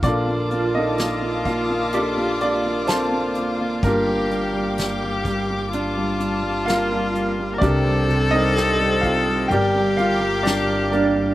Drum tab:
HH |xxxxxxxx|xxxxxxxx|xxxxxxxx|
SD |--o---o-|--o---o-|--o---o-|
BD |o--o----|o--o----|o--o----|